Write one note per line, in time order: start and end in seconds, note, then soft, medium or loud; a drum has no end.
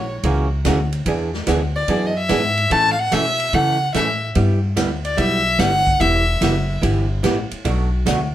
0.00 0.22 A#1 medium
0.00 0.24 C#5 medium
0.23 0.64 C#2 medium
0.23 0.46 C#3 medium
0.23 0.47 E3 medium
0.23 0.47 A#3 medium
0.23 0.47 C#4 medium
0.23 0.47 F#4 medium
0.23 kick soft
0.23 ride medium
0.65 1.05 D2 loud
0.65 0.77 C#3 medium
0.65 0.77 E3 medium
0.65 0.77 A#3 medium
0.65 0.78 C#4 medium
0.65 0.78 F#4 medium
0.65 snare medium
0.65 hi-hat pedal medium
0.65 ride medium
0.92 ride soft
1.06 1.46 E2 medium
1.06 1.29 E3 medium
1.06 1.29 B3 medium
1.06 1.30 D4 medium
1.06 1.30 G#4 medium
1.06 kick soft
1.06 ride medium
1.34 snare soft
1.47 1.87 D2 medium
1.47 1.59 E3 medium
1.47 1.59 B3 medium
1.47 1.60 D4 medium
1.47 1.60 G#4 medium
1.47 snare medium
1.47 hi-hat pedal medium
1.47 ride medium
1.76 2.08 D5 medium
1.88 2.28 F#2 medium
1.88 2.11 E3 medium
1.88 2.12 B3 medium
1.88 2.12 D4 medium
1.88 2.12 G#4 medium
1.88 kick soft
1.88 ride medium
2.07 2.19 D#5 medium
2.17 2.73 E5 medium
2.29 2.70 G#2 medium
2.29 2.41 E3 medium
2.29 2.42 B3 medium
2.29 2.42 D4 medium
2.29 2.42 G#4 medium
2.29 snare medium
2.29 hi-hat pedal medium
2.29 ride medium
2.57 ride soft
2.70 3.11 A2 medium
2.70 2.93 E3 medium
2.70 2.94 A3 medium
2.70 2.94 C#4 medium
2.70 2.94 E4 medium
2.70 2.94 A4 medium
2.70 2.92 A5 loud
2.70 kick soft
2.70 ride medium
2.93 3.00 F5 medium
2.99 3.14 F#5 loud
3.12 3.52 B2 medium
3.12 3.24 E3 medium
3.12 3.24 A3 medium
3.12 3.24 C#4 medium
3.12 3.24 E4 medium
3.12 3.24 A4 medium
3.12 3.55 E5 loud
3.12 snare medium
3.12 hi-hat pedal medium
3.12 ride medium
3.40 ride soft
3.53 3.93 C#3 medium
3.53 3.76 E3 medium
3.53 3.76 A3 medium
3.53 3.77 C#4 medium
3.53 3.77 E4 medium
3.53 3.77 A4 medium
3.53 3.94 F#5 loud
3.53 kick soft
3.53 ride medium
3.94 4.34 A2 medium
3.94 4.06 E3 medium
3.94 4.07 A3 medium
3.94 4.07 C#4 medium
3.94 4.07 E4 medium
3.94 4.07 A4 medium
3.94 4.26 E5 medium
3.94 snare medium
3.94 hi-hat pedal medium
3.94 ride medium
4.35 4.76 G2 medium
4.35 4.58 G3 medium
4.35 4.58 B3 medium
4.35 4.59 E4 medium
4.35 4.59 G4 medium
4.35 kick soft
4.35 ride medium
4.76 5.17 D2 medium
4.76 4.89 G3 medium
4.76 4.89 B3 medium
4.76 4.89 E4 medium
4.76 4.89 G4 medium
4.76 snare medium
4.76 hi-hat pedal medium
4.76 ride medium
5.05 5.19 D5 medium
5.05 ride medium
5.17 5.58 B1 medium
5.17 5.40 G3 medium
5.17 5.41 B3 medium
5.17 5.41 E4 medium
5.17 5.41 G4 medium
5.17 5.61 E5 loud
5.17 kick soft
5.17 ride medium
5.59 5.99 G1 medium
5.59 5.71 G3 medium
5.59 5.71 B3 medium
5.59 5.71 E4 medium
5.59 5.72 G4 medium
5.59 6.02 F#5 loud
5.59 snare medium
5.59 hi-hat pedal medium
5.59 ride medium
5.87 kick soft
6.00 6.40 E1 loud
6.00 6.23 E3 medium
6.00 6.23 B3 medium
6.00 6.23 E4 medium
6.00 6.24 G4 medium
6.00 6.83 E5 medium
6.00 kick soft
6.00 ride medium
6.41 6.81 F#1 medium
6.41 6.53 E3 medium
6.41 6.54 B3 medium
6.41 6.54 E4 medium
6.41 6.54 G4 medium
6.41 snare medium
6.41 hi-hat pedal medium
6.41 ride medium
6.82 7.23 G1 loud
6.82 7.05 E3 medium
6.82 7.05 B3 medium
6.82 7.06 E4 medium
6.82 7.06 G4 medium
6.82 kick soft
6.82 ride medium
7.23 7.50 A1 medium
7.23 7.36 E3 medium
7.23 7.36 B3 medium
7.23 7.36 E4 medium
7.23 7.37 G4 medium
7.23 snare medium
7.23 hi-hat pedal medium
7.23 ride medium
7.51 muted upright bass stroke soft
7.51 ride medium
7.65 8.05 B1 loud
7.65 7.88 B2 medium
7.65 7.88 F#3 medium
7.65 7.88 A3 medium
7.65 7.88 D4 medium
7.65 7.88 F#4 medium
7.65 kick soft
7.65 ride medium
8.06 8.35 D2 medium
8.06 8.18 B2 medium
8.06 8.19 F#3 medium
8.06 8.19 A3 medium
8.06 8.19 D4 medium
8.06 8.19 F#4 medium
8.06 snare medium
8.06 hi-hat pedal medium
8.06 ride medium